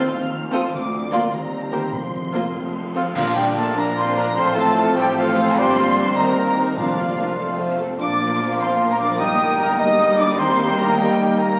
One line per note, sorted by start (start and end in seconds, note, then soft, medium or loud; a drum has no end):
0.00 0.74 D#3 medium
0.00 1.28 F3 medium
0.00 0.74 A3 medium
0.00 0.54 C4 medium
0.00 0.61 C4 medium
0.00 0.74 D#4 medium
0.00 0.51 F4 medium
0.00 0.41 C5 medium
0.00 0.74 D#5 medium
0.00 0.13 C6 medium
0.00 0.22 C6 medium
0.13 0.62 D#2 medium
0.13 0.31 F5 medium
0.13 0.51 F6 medium
0.23 0.74 C6 medium
0.42 0.73 C5 medium
0.51 0.61 C4 medium
0.51 0.61 F4 medium
0.51 1.01 F4 medium
0.51 0.61 A4 medium
0.51 0.61 C5 medium
0.51 0.60 D#6 medium
0.62 0.74 C4 soft
0.71 1.22 D2 medium
0.71 1.34 D3 medium
0.71 1.30 A#3 medium
0.71 1.11 D6 medium
0.83 1.41 A#3 medium
0.92 1.34 D4 medium
1.02 1.34 F4 soft
1.11 1.21 A#3 medium
1.11 1.21 F4 medium
1.11 1.21 A#4 medium
1.11 2.23 A#4 medium
1.11 1.21 D5 medium
1.11 1.32 C6 medium
1.22 1.34 D5 medium
1.31 1.82 D#2 medium
1.31 1.94 D#3 medium
1.31 1.92 G3 medium
1.31 2.95 C4 medium
1.31 1.93 A#5 medium
1.42 2.56 A#3 soft
1.52 2.13 C4 soft
1.62 1.81 G4 soft
1.71 1.81 A#3 medium
1.71 1.81 G4 medium
1.71 1.81 A#4 medium
1.71 1.81 C5 medium
1.71 2.33 C5 medium
1.83 1.94 G4 soft
1.92 2.44 F1 medium
1.92 2.43 F2 medium
1.92 2.50 F2 medium
1.92 2.54 F3 medium
1.92 2.53 A#3 soft
1.92 2.93 C6 medium
2.03 2.64 F4 soft
2.14 2.74 C4 soft
2.24 2.44 A#4 soft
2.33 2.43 A#3 medium
2.33 2.43 F4 medium
2.33 2.44 A#4 medium
2.33 2.44 C5 medium
2.45 2.56 A#4 soft
2.54 3.05 F1 medium
2.54 3.05 F2 medium
2.54 4.15 F3 medium
2.54 2.95 A3 medium
2.66 3.35 F4 soft
2.75 3.17 C4 soft
2.86 3.05 A4 soft
2.95 3.04 C4 medium
2.95 3.04 F4 medium
2.95 3.04 A4 medium
2.95 3.05 C5 medium
2.95 3.18 C5 soft
3.06 3.17 A4 soft
3.15 3.69 A#1 medium
3.15 3.69 A#2 medium
3.15 3.72 A#2 loud
3.15 4.38 A#2 medium
3.15 3.72 F3 medium
3.15 3.35 F3 medium
3.15 3.35 A#3 medium
3.15 3.72 D4 medium
3.15 3.35 D4 medium
3.15 3.35 F4 medium
3.15 3.34 A#4 medium
3.15 4.32 D5 medium
3.15 3.34 F5 loud
3.15 3.34 F5 medium
3.15 concert bass drum medium
3.15 crash medium
3.36 3.56 G3 medium
3.36 3.56 D4 medium
3.36 4.55 F4 medium
3.36 3.57 F4 medium
3.36 3.56 G4 medium
3.36 3.56 D5 medium
3.36 3.44 G5 medium
3.36 3.56 G5 medium
3.47 3.96 A#4 medium
3.55 3.76 A3 medium
3.55 3.76 A#3 medium
3.55 3.76 D4 medium
3.55 3.76 F4 medium
3.55 3.76 A4 medium
3.55 3.76 A#4 medium
3.55 3.86 D5 medium
3.55 3.76 A5 medium
3.55 3.76 A5 loud
3.67 4.84 F5 medium
3.74 4.29 A#1 medium
3.74 4.29 A#2 medium
3.74 4.34 F3 medium
3.74 3.96 A#3 loud
3.74 4.34 D4 medium
3.74 3.96 D4 medium
3.74 3.97 F4 medium
3.74 3.96 A#4 medium
3.74 3.97 D5 medium
3.74 3.96 A#5 medium
3.74 3.97 A#5 loud
3.87 4.38 D5 medium
3.96 4.15 A#3 medium
3.96 4.16 C4 medium
3.96 4.15 D4 medium
3.96 4.15 F4 medium
3.96 4.16 A#4 medium
3.96 4.38 A#4 medium
3.96 4.16 C5 loud
3.96 4.16 C6 loud
3.96 4.17 C6 loud
4.07 4.26 D4 medium
4.16 6.18 F3 medium
4.16 4.26 A#3 medium
4.16 4.36 D4 medium
4.16 4.36 F4 medium
4.16 4.25 A#4 medium
4.16 4.36 D5 medium
4.16 4.35 A#5 medium
4.16 4.36 A#5 loud
4.27 4.38 D4 medium
4.36 4.89 A1 loud
4.36 4.88 A2 medium
4.36 5.59 A2 loud
4.36 5.55 F3 medium
4.36 4.55 A3 medium
4.36 4.55 C4 loud
4.36 5.57 C4 medium
4.36 4.55 F4 medium
4.36 4.55 A4 medium
4.36 4.55 C5 medium
4.36 4.56 C5 loud
4.36 4.95 C5 loud
4.36 4.55 C6 loud
4.36 4.56 C6 loud
4.47 5.25 C4 medium
4.55 4.95 A3 loud
4.55 4.76 C4 medium
4.55 4.76 F4 medium
4.55 4.75 F4 medium
4.55 4.75 A4 medium
4.55 4.95 A4 loud
4.55 4.76 A4 medium
4.55 4.95 A5 loud
4.76 4.96 A3 medium
4.76 4.96 F4 medium
4.76 5.15 F4 medium
4.76 4.95 A4 medium
4.76 4.96 C5 medium
4.85 6.05 F5 medium
4.95 5.50 A1 loud
4.95 5.50 A2 medium
4.95 5.05 G3 loud
4.95 5.16 C4 medium
4.95 5.16 F4 medium
4.95 5.15 G4 loud
4.95 5.16 A4 medium
4.95 5.15 A4 medium
4.95 5.56 C5 loud
4.95 5.15 G5 loud
4.95 5.16 G5 loud
4.95 5.59 C6 medium
5.06 5.59 C5 medium
5.16 5.57 F3 loud
5.16 5.35 A3 medium
5.16 5.35 F4 medium
5.16 5.56 F4 loud
5.16 5.76 F4 medium
5.16 5.35 A4 medium
5.16 5.35 C5 medium
5.16 5.56 F5 loud
5.16 5.58 F5 loud
5.26 5.46 C4 medium
5.36 5.59 A3 medium
5.36 5.57 C4 medium
5.36 5.57 F4 medium
5.36 5.57 A4 medium
5.47 5.59 C4 medium
5.56 6.10 G1 medium
5.56 6.10 G2 loud
5.56 6.18 G2 medium
5.56 6.15 F3 medium
5.56 5.76 G3 medium
5.56 6.15 A#3 medium
5.56 6.17 C4 loud
5.56 5.76 D4 medium
5.56 5.76 G4 medium
5.56 6.17 C5 loud
5.56 6.18 D5 loud
5.56 5.76 D5 medium
5.56 6.15 C6 loud
5.56 6.17 C6 loud
5.67 6.18 D4 medium
5.77 5.97 A#3 medium
5.77 5.97 F4 medium
5.77 5.97 G4 medium
5.77 5.97 F5 medium
5.87 6.97 A#4 medium
5.97 6.17 G3 medium
5.97 6.17 D4 medium
5.97 6.17 G4 medium
5.97 6.18 D5 medium
5.97 6.17 D5 medium
6.06 6.18 F5 medium
6.16 6.69 D#2 medium
6.16 6.70 D#2 medium
6.16 6.78 D#3 medium
6.16 6.76 G3 medium
6.16 6.75 A#3 medium
6.16 6.35 C4 medium
6.16 6.76 C4 medium
6.16 6.36 D#4 medium
6.16 6.76 A#4 medium
6.16 6.36 A#4 medium
6.16 6.36 C5 medium
6.16 6.77 D#5 medium
6.16 6.77 A#5 medium
6.16 6.77 A#5 loud
6.27 6.79 D#4 medium
6.36 6.57 A#3 medium
6.36 6.55 C4 medium
6.36 6.78 G4 medium
6.36 6.57 G4 medium
6.36 6.57 A#4 medium
6.56 6.77 C4 medium
6.56 6.77 D#4 medium
6.56 6.76 A#4 medium
6.56 6.78 C5 medium
6.56 6.79 D#5 medium
6.67 6.79 G5 medium
6.76 7.31 F1 medium
6.76 7.30 F2 medium
6.76 7.34 F2 loud
6.76 7.36 F3 medium
6.76 7.78 F3 medium
6.76 6.96 F3 medium
6.76 7.38 F3 medium
6.76 7.38 A#3 medium
6.76 6.96 D4 medium
6.76 7.79 F4 medium
6.76 6.96 A#4 medium
6.76 7.67 D5 medium
6.76 7.77 F5 medium
6.87 7.48 F4 soft
6.97 7.17 A#3 medium
6.97 7.17 F4 medium
6.97 7.18 F4 medium
6.97 7.40 A#4 medium
6.97 7.18 D5 medium
7.08 7.40 D5 soft
7.18 7.38 F3 medium
7.18 7.38 D4 medium
7.18 7.38 A#4 medium
7.18 7.79 F5 medium
7.29 7.40 A#5 medium
7.37 7.92 F1 medium
7.37 7.92 F2 medium
7.37 7.78 F3 medium
7.37 8.99 F3 medium
7.37 7.79 A3 medium
7.37 7.57 A3 medium
7.37 7.57 C4 medium
7.37 7.57 A4 medium
7.49 8.20 F4 soft
7.59 7.79 F3 medium
7.59 7.78 A3 medium
7.59 7.79 F4 medium
7.59 8.01 A4 medium
7.59 7.79 C5 medium
7.79 8.00 A3 medium
7.79 8.00 C4 medium
7.79 7.99 A4 medium
7.79 8.50 F5 medium
7.90 8.01 A5 medium
7.98 9.15 A#1 medium
7.98 9.15 A#2 medium
7.98 9.22 A#2 medium
7.98 9.15 F3 medium
7.98 9.16 F3 medium
7.98 10.34 A#3 medium
7.98 9.15 A#3 medium
7.98 8.55 D4 medium
7.98 9.15 F4 medium
7.98 10.34 A#4 medium
7.98 8.55 D5 loud
7.98 8.55 D6 medium
7.98 8.56 D6 loud
8.10 8.89 A#3 medium
8.21 8.39 F4 medium
8.31 8.70 A#4 medium
8.40 8.79 F4 medium
8.51 9.21 F5 medium
8.59 8.74 C4 loud
8.59 8.89 C5 medium
8.59 9.21 F5 medium
8.59 9.79 A#5 medium
8.59 8.68 C6 medium
8.59 8.89 C6 medium
8.71 9.48 A#4 medium
8.81 9.21 F4 medium
8.90 8.99 A#3 medium
8.90 9.10 A#3 medium
8.90 8.99 A#4 medium
8.90 8.94 A#5 medium
8.90 9.00 A#5 medium
8.99 9.21 F3 medium
8.99 9.19 D4 loud
8.99 9.19 D5 medium
8.99 9.05 D6 medium
8.99 9.19 D6 loud
9.11 9.29 A#3 medium
9.19 10.35 G1 medium
9.19 10.35 G2 medium
9.19 10.40 G2 medium
9.19 9.77 G3 medium
9.19 11.56 G3 medium
9.19 9.77 A#3 medium
9.19 11.56 D#4 medium
9.19 9.58 D#4 medium
9.19 9.59 D#5 loud
9.19 9.81 G5 loud
9.19 9.58 D#6 loud
9.30 10.08 A#3 medium
9.39 9.58 D#4 medium
9.49 9.89 A#4 medium
9.59 9.79 A#3 medium
9.59 9.98 D#4 medium
9.59 9.78 A#4 loud
9.59 9.78 A#5 medium
9.59 9.78 A#5 loud
9.70 10.77 D#5 medium
9.78 10.37 G3 medium
9.78 10.37 A#3 medium
9.78 10.18 D#4 loud
9.78 10.17 D#5 loud
9.78 10.40 D#5 loud
9.78 10.87 A#5 medium
9.78 10.17 D#6 loud
9.90 10.57 A#4 medium
10.09 10.27 A#3 medium
10.18 11.39 G3 medium
10.18 10.38 D4 loud
10.18 10.38 D5 loud
10.18 10.38 D6 loud
10.18 10.37 D6 loud
10.28 11.60 A#3 medium
10.37 11.57 D#2 loud
10.37 11.58 D#2 medium
10.37 11.60 D#3 loud
10.37 10.97 G3 medium
10.37 11.56 A#3 medium
10.37 10.97 A#3 medium
10.37 10.77 C4 loud
10.37 11.56 A#4 loud
10.37 10.78 C5 loud
10.37 11.00 G5 loud
10.37 10.77 C6 loud
10.48 11.29 D#4 medium
10.58 11.60 A#4 medium
10.68 11.18 G4 medium
10.77 10.97 A#3 loud
10.77 10.98 A#4 loud
10.77 11.08 D#5 medium
10.77 10.98 A#5 medium
10.77 10.98 A#5 loud
10.88 11.60 A#5 medium
10.98 11.59 G3 medium
10.98 11.39 G3 loud
10.98 11.59 A#3 medium
10.98 11.39 G4 loud
10.98 11.60 D#5 loud
10.98 11.39 G5 loud
10.98 11.60 G5 medium
10.98 11.39 G5 loud
11.09 11.60 D#5 medium
11.20 11.60 G4 medium
11.30 11.50 D#4 medium
11.38 11.60 G3 medium
11.38 11.48 A#3 loud
11.38 11.60 A#4 medium
11.38 11.59 A#5 medium
11.38 11.60 A#5 loud
11.51 11.60 D#4 medium